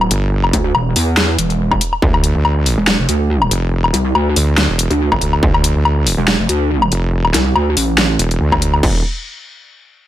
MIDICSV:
0, 0, Header, 1, 4, 480
1, 0, Start_track
1, 0, Tempo, 425532
1, 362, Time_signature, 4, 2, 24, 8
1, 11365, End_track
2, 0, Start_track
2, 0, Title_t, "Wobble bass"
2, 0, Program_c, 0, 39
2, 603, Note_on_c, 0, 38, 95
2, 825, Note_off_c, 0, 38, 0
2, 842, Note_on_c, 0, 28, 103
2, 1065, Note_off_c, 0, 28, 0
2, 1083, Note_on_c, 0, 40, 97
2, 1545, Note_off_c, 0, 40, 0
2, 1563, Note_on_c, 0, 28, 101
2, 2025, Note_off_c, 0, 28, 0
2, 3134, Note_on_c, 0, 28, 88
2, 3353, Note_off_c, 0, 28, 0
2, 3374, Note_on_c, 0, 29, 93
2, 3465, Note_off_c, 0, 29, 0
2, 3482, Note_on_c, 0, 38, 98
2, 3945, Note_off_c, 0, 38, 0
2, 4443, Note_on_c, 0, 36, 99
2, 4665, Note_off_c, 0, 36, 0
2, 4683, Note_on_c, 0, 38, 99
2, 4905, Note_off_c, 0, 38, 0
2, 5534, Note_on_c, 0, 38, 96
2, 5753, Note_off_c, 0, 38, 0
2, 6974, Note_on_c, 0, 28, 97
2, 7193, Note_off_c, 0, 28, 0
2, 7214, Note_on_c, 0, 29, 93
2, 7305, Note_off_c, 0, 29, 0
2, 7322, Note_on_c, 0, 38, 102
2, 7785, Note_off_c, 0, 38, 0
2, 8282, Note_on_c, 0, 36, 101
2, 8505, Note_off_c, 0, 36, 0
2, 8522, Note_on_c, 0, 38, 94
2, 8745, Note_off_c, 0, 38, 0
2, 8762, Note_on_c, 0, 33, 98
2, 9225, Note_off_c, 0, 33, 0
2, 11365, End_track
3, 0, Start_track
3, 0, Title_t, "Wobble bass"
3, 0, Program_c, 1, 39
3, 123, Note_on_c, 1, 31, 103
3, 585, Note_off_c, 1, 31, 0
3, 2283, Note_on_c, 1, 38, 95
3, 2633, Note_off_c, 1, 38, 0
3, 2655, Note_on_c, 1, 38, 99
3, 3113, Note_off_c, 1, 38, 0
3, 3963, Note_on_c, 1, 29, 100
3, 4425, Note_off_c, 1, 29, 0
3, 4923, Note_on_c, 1, 38, 102
3, 5273, Note_off_c, 1, 38, 0
3, 5294, Note_on_c, 1, 28, 102
3, 5513, Note_off_c, 1, 28, 0
3, 5774, Note_on_c, 1, 29, 102
3, 5865, Note_off_c, 1, 29, 0
3, 5883, Note_on_c, 1, 38, 102
3, 6105, Note_off_c, 1, 38, 0
3, 6123, Note_on_c, 1, 38, 101
3, 6473, Note_off_c, 1, 38, 0
3, 6494, Note_on_c, 1, 38, 104
3, 6953, Note_off_c, 1, 38, 0
3, 7802, Note_on_c, 1, 29, 102
3, 8265, Note_off_c, 1, 29, 0
3, 9242, Note_on_c, 1, 28, 101
3, 9465, Note_off_c, 1, 28, 0
3, 9482, Note_on_c, 1, 38, 97
3, 9945, Note_off_c, 1, 38, 0
3, 9962, Note_on_c, 1, 28, 98
3, 10186, Note_off_c, 1, 28, 0
3, 11365, End_track
4, 0, Start_track
4, 0, Title_t, "Drums"
4, 14, Note_on_c, 9, 77, 77
4, 122, Note_on_c, 9, 42, 83
4, 127, Note_off_c, 9, 77, 0
4, 235, Note_off_c, 9, 42, 0
4, 494, Note_on_c, 9, 77, 62
4, 602, Note_on_c, 9, 36, 63
4, 602, Note_on_c, 9, 42, 83
4, 607, Note_off_c, 9, 77, 0
4, 715, Note_off_c, 9, 36, 0
4, 715, Note_off_c, 9, 42, 0
4, 842, Note_on_c, 9, 77, 82
4, 955, Note_off_c, 9, 77, 0
4, 1083, Note_on_c, 9, 46, 90
4, 1195, Note_off_c, 9, 46, 0
4, 1323, Note_on_c, 9, 38, 127
4, 1435, Note_off_c, 9, 38, 0
4, 1563, Note_on_c, 9, 42, 78
4, 1676, Note_off_c, 9, 42, 0
4, 1694, Note_on_c, 9, 42, 35
4, 1807, Note_off_c, 9, 42, 0
4, 1934, Note_on_c, 9, 36, 62
4, 1934, Note_on_c, 9, 77, 80
4, 2043, Note_on_c, 9, 42, 83
4, 2047, Note_off_c, 9, 36, 0
4, 2047, Note_off_c, 9, 77, 0
4, 2155, Note_off_c, 9, 42, 0
4, 2175, Note_on_c, 9, 77, 52
4, 2283, Note_on_c, 9, 36, 126
4, 2287, Note_off_c, 9, 77, 0
4, 2395, Note_off_c, 9, 36, 0
4, 2415, Note_on_c, 9, 77, 64
4, 2523, Note_on_c, 9, 42, 78
4, 2527, Note_off_c, 9, 77, 0
4, 2636, Note_off_c, 9, 42, 0
4, 2763, Note_on_c, 9, 77, 83
4, 2875, Note_off_c, 9, 77, 0
4, 3003, Note_on_c, 9, 46, 87
4, 3115, Note_off_c, 9, 46, 0
4, 3242, Note_on_c, 9, 38, 122
4, 3355, Note_off_c, 9, 38, 0
4, 3483, Note_on_c, 9, 42, 76
4, 3595, Note_off_c, 9, 42, 0
4, 3854, Note_on_c, 9, 77, 82
4, 3962, Note_on_c, 9, 42, 80
4, 3967, Note_off_c, 9, 77, 0
4, 4075, Note_off_c, 9, 42, 0
4, 4334, Note_on_c, 9, 77, 66
4, 4442, Note_on_c, 9, 42, 79
4, 4447, Note_off_c, 9, 77, 0
4, 4555, Note_off_c, 9, 42, 0
4, 4682, Note_on_c, 9, 77, 85
4, 4795, Note_off_c, 9, 77, 0
4, 4923, Note_on_c, 9, 46, 96
4, 5035, Note_off_c, 9, 46, 0
4, 5162, Note_on_c, 9, 38, 124
4, 5275, Note_off_c, 9, 38, 0
4, 5402, Note_on_c, 9, 42, 80
4, 5515, Note_off_c, 9, 42, 0
4, 5534, Note_on_c, 9, 42, 34
4, 5647, Note_off_c, 9, 42, 0
4, 5774, Note_on_c, 9, 36, 62
4, 5774, Note_on_c, 9, 77, 88
4, 5882, Note_on_c, 9, 42, 79
4, 5887, Note_off_c, 9, 36, 0
4, 5887, Note_off_c, 9, 77, 0
4, 5995, Note_off_c, 9, 42, 0
4, 6014, Note_on_c, 9, 77, 55
4, 6123, Note_on_c, 9, 36, 118
4, 6127, Note_off_c, 9, 77, 0
4, 6235, Note_off_c, 9, 36, 0
4, 6254, Note_on_c, 9, 77, 67
4, 6362, Note_on_c, 9, 42, 82
4, 6367, Note_off_c, 9, 77, 0
4, 6475, Note_off_c, 9, 42, 0
4, 6602, Note_on_c, 9, 77, 90
4, 6715, Note_off_c, 9, 77, 0
4, 6842, Note_on_c, 9, 46, 96
4, 6955, Note_off_c, 9, 46, 0
4, 7082, Note_on_c, 9, 38, 120
4, 7195, Note_off_c, 9, 38, 0
4, 7322, Note_on_c, 9, 42, 81
4, 7435, Note_off_c, 9, 42, 0
4, 7694, Note_on_c, 9, 77, 89
4, 7802, Note_on_c, 9, 42, 80
4, 7807, Note_off_c, 9, 77, 0
4, 7915, Note_off_c, 9, 42, 0
4, 8174, Note_on_c, 9, 77, 64
4, 8283, Note_on_c, 9, 38, 62
4, 8283, Note_on_c, 9, 42, 86
4, 8287, Note_off_c, 9, 77, 0
4, 8396, Note_off_c, 9, 38, 0
4, 8396, Note_off_c, 9, 42, 0
4, 8523, Note_on_c, 9, 77, 88
4, 8636, Note_off_c, 9, 77, 0
4, 8763, Note_on_c, 9, 46, 101
4, 8875, Note_off_c, 9, 46, 0
4, 9003, Note_on_c, 9, 38, 116
4, 9115, Note_off_c, 9, 38, 0
4, 9243, Note_on_c, 9, 42, 83
4, 9355, Note_off_c, 9, 42, 0
4, 9374, Note_on_c, 9, 42, 38
4, 9487, Note_off_c, 9, 42, 0
4, 9614, Note_on_c, 9, 36, 60
4, 9615, Note_on_c, 9, 77, 84
4, 9723, Note_on_c, 9, 42, 85
4, 9727, Note_off_c, 9, 36, 0
4, 9727, Note_off_c, 9, 77, 0
4, 9836, Note_off_c, 9, 42, 0
4, 9855, Note_on_c, 9, 77, 56
4, 9962, Note_on_c, 9, 36, 119
4, 9963, Note_on_c, 9, 49, 88
4, 9967, Note_off_c, 9, 77, 0
4, 10075, Note_off_c, 9, 36, 0
4, 10076, Note_off_c, 9, 49, 0
4, 11365, End_track
0, 0, End_of_file